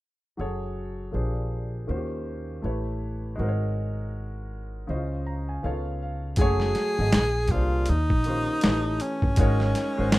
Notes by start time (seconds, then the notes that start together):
0.37 F#1 F#3 F#4 G#4 A4 C#5
1.12 A#1 A#2 A#3 D4 G4 G#4 C5
1.87 D#2 D#3 A#3 C#4 F4 F#4 C5
1.96 G4
2.62 A1 A3 E4 G4 B4 C#5
3.36 G#1 G#3 D#4 F#4
3.40 A#4 C5
3.48 C#5
4.87 C#2 C#3 C#4 E4 C5 D#5
4.95 F4
5.26 A#5
5.49 G#5
5.63 C#2 C#3 B3 D#4 A4 C#5 F5
5.71 F4
6.02 F5
6.36 F#1 F#3 F#4 G#4, kick, closed hi-hat
6.40 A3 C#5
6.60 snare
6.75 snare, closed hi-hat
6.98 G#1 F#3 F#4 G#4 A4 D#5
7.12 A#1, snare, closed hi-hat
7.48 C2 A#2 A#3 F4, kick, closed hi-hat
7.52 D4 G4 G#4 C5
7.86 D#2 D#4, closed hi-hat
8.10 A#1, kick
8.24 D#3 A#3 C#4 F4, closed hi-hat
8.28 G4 C5
8.61 A1 E3 A3 G4 B4, snare, closed hi-hat
8.66 C#5
9.00 C#4, closed hi-hat
9.22 G1, kick
9.36 G#1 G#3 D#4 F#4 A#4, kick, closed hi-hat
9.41 C#5
9.60 snare
9.75 snare, closed hi-hat
9.97 G#1 G#3 D#4 F#4 A#4 C5
10.12 snare, closed hi-hat